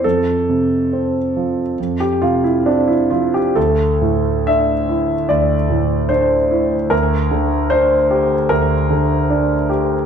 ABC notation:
X:1
M:4/4
L:1/16
Q:1/4=74
K:Dm
V:1 name="Grand piano"
A8- A G F E D E F G | A4 e4 d4 c4 | B4 c4 B6 z2 |]
V:2 name="Grand piano" clef=bass
F,,2 C,2 C2 F,2 F,,2 C,2 C2 F,2 | D,,2 A,,2 D2 E2 D,,2 A,,2 D2 E2 | D,,2 D,2 D2 G2 D,,2 D,2 D2 G2 |]